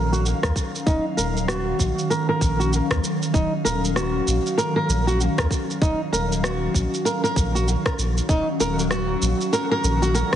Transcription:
0.00 0.33 A#1 medium
0.00 10.36 D#3 medium
0.00 10.36 F#3 medium
0.00 10.36 C#4 medium
0.00 0.10 A#4 medium
0.00 10.36 F5 medium
0.12 0.24 F#4 medium
0.12 shaker soft
0.26 shaker soft
0.43 0.51 D#2 medium
0.43 0.50 A#4 medium
0.43 kick medium
0.43 cross-stick medium
0.43 shaker soft
0.56 kick medium
0.56 shaker medium
0.75 shaker soft
0.86 0.99 D#1 medium
0.86 1.04 D#4 medium
0.86 kick loud
0.86 shaker soft
1.17 1.73 D#1 medium
1.17 1.35 A#4 medium
1.17 shaker medium
1.37 shaker soft
1.48 2.09 F#4 medium
1.48 cross-stick medium
1.48 shaker soft
1.79 1.92 A#1 medium
1.79 kick medium
1.79 shaker medium
1.99 shaker soft
2.10 2.28 A#4 medium
2.10 shaker soft
2.29 2.58 A#4 medium
2.41 2.81 A#1 loud
2.41 kick loud
2.41 shaker medium
2.60 2.71 F#4 medium
2.60 shaker soft
2.73 shaker soft
2.91 2.99 D#2 medium
2.91 2.98 A#4 medium
2.91 kick medium
2.91 cross-stick medium
2.91 shaker soft
3.04 shaker medium
3.23 shaker soft
3.34 3.46 D#1 loud
3.34 3.51 D#4 medium
3.34 kick loud
3.34 shaker soft
3.65 4.20 D#1 medium
3.65 3.82 A#4 medium
3.65 shaker medium
3.85 shaker soft
3.96 4.56 F#4 medium
3.96 cross-stick medium
3.96 shaker soft
4.27 4.39 A#1 medium
4.27 shaker medium
4.46 shaker soft
4.58 4.75 A#4 medium
4.58 shaker soft
4.76 5.05 A#4 loud
4.89 5.28 A#1 loud
4.89 shaker medium
5.07 5.19 F#4 medium
5.07 shaker soft
5.21 shaker soft
5.38 5.46 D#2 medium
5.38 5.45 A#4 medium
5.38 kick loud
5.38 cross-stick medium
5.38 shaker soft
5.51 kick loud
5.51 shaker medium
5.71 shaker soft
5.82 5.94 D#1 loud
5.82 5.99 D#4 medium
5.82 kick loud
5.82 shaker soft
6.12 6.67 D#1 medium
6.12 6.30 A#4 medium
6.12 shaker medium
6.32 shaker soft
6.43 7.04 F#4 medium
6.43 cross-stick medium
6.43 shaker soft
6.74 6.86 A#1 medium
6.74 kick medium
6.74 shaker medium
6.94 shaker soft
7.05 7.22 A#4 medium
7.05 shaker soft
7.24 7.53 A#4 medium
7.24 shaker soft
7.36 7.75 A#1 medium
7.36 kick loud
7.36 shaker medium
7.55 7.67 F#4 medium
7.55 shaker soft
7.68 shaker soft
7.86 7.93 A#4 medium
7.86 kick loud
7.86 cross-stick medium
7.86 shaker soft
7.98 8.20 A#1 medium
7.98 shaker medium
8.18 shaker soft
8.29 8.41 D#1 loud
8.29 10.36 F#3 medium
8.29 8.47 D#4 medium
8.29 kick loud
8.29 shaker soft
8.60 9.15 D#1 medium
8.60 8.78 A#4 medium
8.60 shaker medium
8.79 shaker soft
8.91 9.52 F#4 medium
8.91 cross-stick medium
8.91 shaker soft
9.22 9.34 A#1 medium
9.22 shaker medium
9.41 shaker soft
9.53 9.70 A#4 medium
9.53 shaker soft
9.71 10.00 A#4 loud
9.84 10.23 A#1 loud
9.84 shaker medium
10.02 10.14 F#4 medium
10.02 shaker soft
10.14 10.31 A#4 medium
10.14 shaker soft
10.33 cross-stick medium

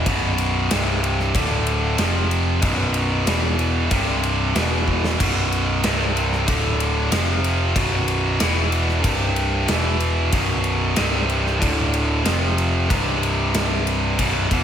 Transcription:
0.06 0.67 B0 loud
0.06 0.70 B1 loud
0.06 0.70 F#2 loud
0.06 0.70 B2 loud
0.06 kick loud
0.06 ride medium
0.38 ride medium
0.71 1.32 C1 medium
0.71 1.34 C2 loud
0.71 1.35 G2 loud
0.71 1.35 C3 loud
0.71 snare loud
0.71 ride loud
1.04 ride medium
1.20 snare soft
1.35 1.95 D1 medium
1.35 1.98 D2 medium
1.35 1.98 A2 loud
1.35 1.98 D3 loud
1.35 kick loud
1.35 ride loud
1.67 ride medium
1.98 2.59 F1 loud
1.98 2.61 F2 medium
1.98 2.61 C3 loud
1.98 2.62 F3 loud
1.98 snare loud
1.98 ride loud
2.31 ride medium
2.62 3.23 B0 loud
2.62 3.25 B1 loud
2.62 3.25 F#2 loud
2.62 3.26 B2 loud
2.62 kick loud
2.62 ride loud
2.94 ride medium
3.26 3.87 E1 medium
3.26 3.90 E2 loud
3.26 3.91 B2 loud
3.26 3.91 E3 loud
3.26 snare loud
3.26 ride loud
3.59 ride medium
3.91 4.51 C1 medium
3.91 4.54 C2 loud
3.91 4.54 G2 loud
3.91 4.55 C3 loud
3.91 kick loud
3.91 ride medium
4.24 ride medium
4.55 5.15 E1 medium
4.55 5.19 E2 medium
4.55 5.19 B2 loud
4.55 5.19 E3 loud
4.55 snare loud
4.55 ride medium
4.88 kick medium
5.04 snare medium
5.19 5.80 B0 medium
5.19 5.84 B1 loud
5.19 5.85 F#2 loud
5.19 5.86 B2 loud
5.19 kick loud
5.19 crash loud
5.19 ride medium
5.52 ride medium
5.84 6.44 C1 loud
5.84 6.47 C2 medium
5.84 6.48 G2 loud
5.84 6.47 C3 loud
5.84 snare loud
5.84 ride medium
6.17 ride medium
6.32 snare soft
6.47 7.08 D1 medium
6.47 7.11 D2 medium
6.47 7.11 A2 medium
6.47 7.11 D3 loud
6.47 kick loud
6.47 ride loud
6.80 ride medium
7.12 7.72 F1 loud
7.12 7.75 F2 medium
7.12 7.75 C3 medium
7.12 7.76 F3 loud
7.12 snare loud
7.12 ride loud
7.44 ride medium
7.76 8.36 B0 medium
7.76 8.40 B1 medium
7.76 8.40 F#2 loud
7.76 8.40 B2 loud
7.76 kick loud
7.76 ride loud
8.08 ride medium
8.40 9.01 E1 loud
8.40 9.03 E2 medium
8.40 9.03 B2 loud
8.40 9.04 E3 loud
8.40 snare loud
8.40 ride loud
8.72 ride medium
8.89 snare soft
9.03 9.65 C1 loud
9.03 9.67 C2 loud
9.03 9.67 G2 loud
9.03 9.67 C3 loud
9.03 kick loud
9.03 ride loud
9.36 ride medium
9.68 10.29 E1 medium
9.68 10.32 E2 medium
9.68 10.32 B2 loud
9.68 10.32 E3 loud
9.68 snare loud
9.68 ride medium
10.00 ride medium
10.32 10.93 B0 medium
10.32 10.96 B1 medium
10.32 10.96 F#2 loud
10.32 10.97 B2 loud
10.32 kick loud
10.32 ride loud
10.64 ride medium
10.96 11.58 C1 loud
10.96 11.59 C2 medium
10.96 11.60 G2 loud
10.96 11.60 C3 loud
10.96 snare loud
10.96 ride loud
11.29 ride medium
11.47 snare soft
11.59 12.22 D1 medium
11.59 12.23 D2 medium
11.59 12.24 A2 loud
11.59 12.24 D3 loud
11.59 kick loud
11.59 ride medium
11.94 ride medium
12.24 12.87 F1 loud
12.24 12.88 F2 medium
12.24 12.88 C3 loud
12.24 12.88 F3 loud
12.24 snare loud
12.24 ride loud
12.58 ride medium
12.89 14.15 C1 loud
12.89 14.17 C2 medium
12.89 14.18 G2 loud
12.89 14.18 C3 loud
12.89 kick loud
12.89 ride loud
13.23 ride medium
13.54 snare loud
13.54 ride loud
13.87 ride medium
14.19 14.49 B0 medium
14.19 14.50 B1 medium
14.19 14.50 F#2 loud
14.19 14.50 B2 loud
14.19 kick loud
14.19 ride loud
14.51 14.63 E1 loud
14.51 14.63 E2 medium
14.51 14.63 B2 medium
14.51 14.63 E3 medium
14.51 kick loud
14.51 ride medium

